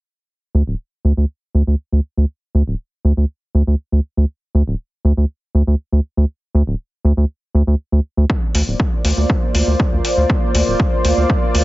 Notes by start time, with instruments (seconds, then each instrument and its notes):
0.55 analog synth bass D2
0.67 analog synth bass D1
1.05 analog synth bass D2
1.17 analog synth bass D2
1.55 analog synth bass D2
1.67 analog synth bass D2
1.92 analog synth bass D2
2.17 analog synth bass D2
2.55 analog synth bass D2
2.67 analog synth bass D1
3.05 analog synth bass D2
3.17 analog synth bass D2
3.55 analog synth bass D2
3.67 analog synth bass D2
3.92 analog synth bass D2
4.17 analog synth bass D2
4.55 analog synth bass D2
4.67 analog synth bass D1
5.05 analog synth bass D2
5.17 analog synth bass D2
5.55 analog synth bass D2
5.67 analog synth bass D2
5.92 analog synth bass D2
6.17 analog synth bass D2
6.55 analog synth bass D2
6.67 analog synth bass D1
7.05 analog synth bass D2
7.17 analog synth bass D2
7.55 analog synth bass D2
7.67 analog synth bass D2
7.92 analog synth bass D2
8.17 analog synth bass D2
8.30 analog synth pad A#3 F4 C5 D5, kick
8.55 analog synth bass D2, open hi-hat
8.67 analog synth bass D1
8.80 kick
9.05 analog synth bass D2, open hi-hat
9.17 analog synth bass D2
9.30 kick
9.55 analog synth bass D2, open hi-hat
9.67 analog synth bass D2
9.80 kick
9.92 analog synth bass D2
10.05 open hi-hat
10.17 analog synth bass D2
10.30 kick
10.55 analog synth bass D2, open hi-hat
10.67 analog synth bass D1
10.80 kick
11.05 analog synth bass D2, open hi-hat
11.17 analog synth bass D2
11.30 kick
11.55 analog synth bass D2, open hi-hat